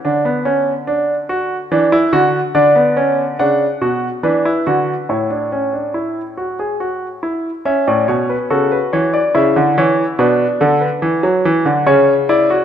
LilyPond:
<<
  \new Staff \with { instrumentName = "Grand piano" } { \time 3/4 \key d \major \tempo 4 = 71 << { r2. | \key a \major d''4 fis''4 b'4 | cis''2~ cis''8 r8 | e''16 d''16 cis''16 b'16 a'16 b'16 cis''16 d''16 e''8 cis''8 |
b'8 a'16 b'4~ b'16 cis''8 d''8 | } \\ { d'16 b16 cis'8 d'8 fis'8 d'16 e'16 fis'8 | d'16 b16 cis'8 d'8 fis'8 d'16 e'16 fis'8 | e'16 d'16 cis'16 d'16 e'8 fis'16 gis'16 fis'8 e'8 | cis'4 fis'4 e'4 |
d'2 cis'8 e'16 fis'16 | } >> }
  \new Staff \with { instrumentName = "Grand piano" } { \clef bass \time 3/4 \key d \major d2 e8 d8 | \key a \major d4 cis8 b,8 e8 d8 | a,2~ a,8 r8 | r16 a,16 b,8 cis8 e8 cis16 d16 e8 |
b,8 d8 e16 fis16 e16 d16 cis4 | }
>>